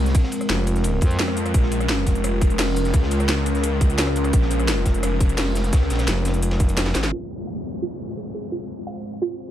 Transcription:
Already playing: detuned saw bass C2, analog synth pad G#3 C4 F4 A#4
0.06 snare, closed hi-hat
0.15 kick, closed hi-hat, ride
0.24 snare
0.32 closed hi-hat, ride
0.41 cross-stick, closed hi-hat
0.50 fm bass F1, snare, closed hi-hat, ride
0.67 closed hi-hat, ride
0.76 snare, closed hi-hat
0.84 closed hi-hat, ride
1.01 fm bass F2, kick, closed hi-hat, ride
1.11 closed hi-hat
1.19 detuned saw bass F2, snare, closed hi-hat, ride
1.28 cross-stick
1.37 closed hi-hat, ride
1.46 cross-stick, closed hi-hat, ride
1.54 detuned saw bass A#1, analog synth pad C#4, kick, closed hi-hat, ride
1.63 snare
1.72 closed hi-hat, ride
1.80 cross-stick, closed hi-hat
1.89 snare, closed hi-hat, ride
2.06 detuned saw bass F1, kick, snare, closed hi-hat, ride
2.15 closed hi-hat
2.24 cross-stick, closed hi-hat, ride
2.41 kick, closed hi-hat, ride
2.50 closed hi-hat
2.59 snare, closed hi-hat, open hi-hat
2.76 closed hi-hat, ride
2.85 snare, closed hi-hat
2.94 detuned saw bass C#2, kick, closed hi-hat, ride
3.03 snare
3.11 closed hi-hat, ride
3.20 cross-stick, closed hi-hat
3.29 snare, closed hi-hat, ride
3.46 closed hi-hat, ride
3.55 snare, closed hi-hat
3.63 closed hi-hat, ride
3.81 kick, closed hi-hat, ride
3.90 closed hi-hat
3.98 snare, closed hi-hat, ride
4.07 cross-stick
4.16 closed hi-hat, ride
4.24 cross-stick, closed hi-hat, ride
4.33 detuned saw bass A#1, kick, closed hi-hat, ride
4.42 snare
4.51 closed hi-hat, ride
4.59 cross-stick, closed hi-hat
4.68 snare, closed hi-hat, ride
4.86 detuned saw bass F1, kick, snare, closed hi-hat, ride
4.94 closed hi-hat
5.03 cross-stick, closed hi-hat, ride
5.20 kick, closed hi-hat, ride
5.29 closed hi-hat
5.38 snare, closed hi-hat, open hi-hat
5.55 snare, closed hi-hat, ride
5.64 snare, closed hi-hat
5.73 detuned saw bass C#2, kick, snare, closed hi-hat, ride
5.81 snare
5.90 detuned saw bass A#1, snare, closed hi-hat, ride
5.95 cross-stick, snare, closed hi-hat, ride
5.99 snare, ride
6.08 fm bass F1, snare, closed hi-hat, ride
6.25 snare, closed hi-hat, ride
6.34 closed hi-hat
6.42 closed hi-hat, ride
6.51 snare, ride
6.60 kick, closed hi-hat
6.69 closed hi-hat, ride
6.77 snare, closed hi-hat, ride
6.86 snare, ride
6.94 detuned saw bass G#1, snare, closed hi-hat, ride
7.03 snare, closed hi-hat, ride
7.12 analog synth pad G#3 C4 F4 C5, synth pluck F4, crash, downlifter
7.47 synth pluck F5
7.82 synth pluck F4
8.17 synth pluck G#4
8.34 synth pluck G#4
8.52 synth pluck F4
8.87 synth pluck F5
9.22 synth pluck F4

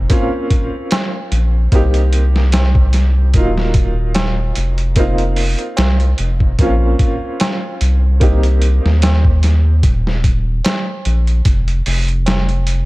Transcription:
Already playing: upright piano A#3 C4 D#4 F4
0.09 upright piano A#3 C4 C#4 F4, kick, closed hi-hat
0.50 kick, closed hi-hat
0.91 snare, closed hi-hat, tabla na
1.32 analog synth bass A#1, closed hi-hat
1.72 analog synth bass C2, upright piano A#3 C4 D#4 G4, kick, closed hi-hat
1.94 closed hi-hat
2.13 closed hi-hat
2.36 snare
2.52 snare, closed hi-hat, tabla na
2.75 kick
2.93 snare, closed hi-hat
3.34 analog synth bass D#1, upright piano F#3 A#3 D#4 F4, kick, closed hi-hat
3.58 snare
3.74 kick, closed hi-hat
4.15 snare, closed hi-hat, tabla na
4.55 analog synth bass F1, closed hi-hat
4.78 closed hi-hat
4.96 upright piano A#3 C4 D#4 F4, kick, closed hi-hat
5.18 closed hi-hat
5.36 open hi-hat
5.59 closed hi-hat
5.77 analog synth bass C2, snare, closed hi-hat, tabla na
6.00 closed hi-hat
6.18 analog synth bass F1, closed hi-hat
6.40 kick
6.59 analog synth bass A#1, upright piano A#3 C4 C#4 F4, kick, closed hi-hat
6.99 kick, closed hi-hat
7.40 snare, closed hi-hat, tabla na
7.81 analog synth bass C2, closed hi-hat
8.20 upright piano A#3 C4 D#4 G4, kick, closed hi-hat
8.43 closed hi-hat
8.62 closed hi-hat
8.85 analog synth bass D#2, snare
9.02 snare, closed hi-hat, tabla na
9.25 kick
9.43 snare, closed hi-hat
9.83 analog synth bass D#1, kick, closed hi-hat
10.07 snare
10.24 kick, closed hi-hat
10.64 snare, closed hi-hat, tabla na
11.05 analog synth bass A#1, closed hi-hat
11.27 closed hi-hat
11.45 analog synth bass F1, kick, closed hi-hat
11.68 closed hi-hat
11.86 analog synth bass F1, open hi-hat
12.08 closed hi-hat
12.26 snare, closed hi-hat, tabla na
12.49 closed hi-hat
12.67 closed hi-hat

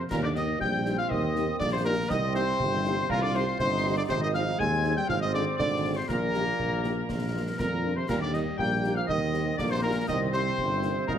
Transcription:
0.10 tuba D#2, euphonium A#2, woodwind section A#4, cornet A#4, piccolo A#5, concert bass drum, snare, crash
0.23 euphonium D3, woodwind section D5, cornet D5, piccolo D6
0.35 euphonium D#3, french horn section A#3 D#4 G4, woodwind section D#5, cornet D#5, piccolo D#6, snare
0.60 tuba A#1, euphonium G3, trombone section C4, woodwind section G5, cornet G5, piccolo G6, concert bass drum
0.85 french horn section A#3 D#4 G4, snare
0.97 euphonium F3, woodwind section F5, cornet F5, piccolo F6
1.10 tuba D#2, euphonium D#3, cornet D#5, woodwind section D#5, piccolo D#6, concert bass drum
1.35 french horn section A#3 D#4 G4, snare
1.59 tuba A#1, euphonium D3, trombone section A#3, cornet D5, woodwind section D5, piccolo D6, concert bass drum, snare
1.73 euphonium C3, cornet C5, woodwind section C5, piccolo C6
1.85 euphonium A#2, french horn section A#3 D#4 G4, cornet A#4, woodwind section A#4, piccolo A#5
2.10 tuba C2, euphonium D#3, trombone section C4, cornet D#5, woodwind section D#5, piccolo D#6, concert bass drum, snare, crash
2.35 euphonium C3, french horn section A#3 D#4 G4, cornet C5, woodwind section C5, piccolo C6, snare
2.60 tuba G1, concert bass drum
2.85 french horn section A#3 D#4 G4, snare
3.09 tuba C2, euphonium A#2, trombone section F4, woodwind section A#4, cornet A#4, piccolo A#5, concert bass drum
3.22 euphonium D3, woodwind section D5, cornet D5, piccolo D6
3.34 euphonium C3, french horn section A#3 D#4 G4, woodwind section C5, cornet C5, piccolo C6, snare
3.59 tuba G1, euphonium C3, trombone section D#4, woodwind section C5, cornet C5, piccolo C6, concert bass drum, snare
3.85 french horn section A#3 D#4 G4
3.96 euphonium D3, woodwind section D5, cornet D5, piccolo D6
4.09 tuba G#1, euphonium C3, woodwind section C5, cornet C5, piccolo C6, concert bass drum, snare, crash
4.20 euphonium D#3, woodwind section D#5, cornet D#5, piccolo D#6
4.34 euphonium F3, french horn section C4 D#4 G#4, woodwind section F5, cornet F5, piccolo F6, snare
4.58 tuba D#2, euphonium G#3, trombone section C4, woodwind section G#5, cornet G#5, piccolo G#6, concert bass drum
4.84 french horn section C4 D#4 G#4, snare
4.96 euphonium G3, woodwind section G5, cornet G5, piccolo G6
5.08 tuba G#1, euphonium F3, trombone section C4, woodwind section F5, cornet F5, piccolo F6, concert bass drum
5.20 euphonium D#3, woodwind section D#5, cornet D#5, piccolo D#6
5.33 euphonium D3, french horn section C4 F4 G#4, woodwind section D5, cornet D5, piccolo D6, snare
5.57 tuba G#1, euphonium D3, woodwind section D5, cornet D5, piccolo D6, concert bass drum, snare
5.84 french horn section C4 F4 G#4
5.96 euphonium C3, woodwind section C5, cornet C5, piccolo C6
6.08 tuba A#1, euphonium A#2, trombone section A#3, woodwind section A#4, cornet A#4, piccolo A#5, concert bass drum, snare, crash
6.34 french horn section A#3 D#4 G4, snare
6.59 tuba A#1, concert bass drum
6.84 french horn section A#3 D#4 G4, snare
7.09 tuba A#1, concert bass drum, snare
7.34 french horn section A#3 D4 F4
7.58 tuba F2, euphonium A#2, woodwind section A#4, cornet A#4, piccolo A#5, concert bass drum, snare
7.84 french horn section A#3 D4 F4
7.96 euphonium C3, woodwind section C5, cornet C5, piccolo C6
8.08 tuba D#2, euphonium A#2, trombone section G3, woodwind section A#4, cornet A#4, piccolo A#5, concert bass drum, snare, crash
8.21 euphonium D3, woodwind section D5, cornet D5, piccolo D6
8.33 euphonium D#3, french horn section A#3 D#4 G4, woodwind section D#5, cornet D#5, piccolo D#6, snare
8.57 tuba A#1, euphonium G3, trombone section A#3, woodwind section G5, cornet G5, piccolo G6, concert bass drum
8.84 french horn section A#3 D#4 G4, snare
8.95 euphonium F3, woodwind section F5, cornet F5, piccolo F6
9.07 tuba D#2, euphonium D#3, trombone section C4, woodwind section D#5, cornet D#5, piccolo D#6, concert bass drum
9.34 french horn section A#3 D#4 G4, snare
9.57 tuba A#1, euphonium D3, trombone section A#3, woodwind section D5, cornet D5, piccolo D6, concert bass drum, snare
9.70 euphonium C3, woodwind section C5, cornet C5, piccolo C6
9.82 euphonium A#2, french horn section A#3 D#4 G4, woodwind section A#4, cornet A#4, piccolo A#5
10.08 tuba C2, euphonium D#3, trombone section C4, woodwind section D#5, cornet D#5, piccolo D#6, concert bass drum, snare, crash
10.32 euphonium C3, french horn section A#3 D#4 G4, woodwind section C5, cornet C5, piccolo C6, snare
10.58 tuba G1, concert bass drum
10.83 french horn section A#3 D#4 G4, snare
11.07 tuba C2, euphonium A#2, trombone section D#4, cornet A#4, woodwind section A#4, piccolo A#5, concert bass drum

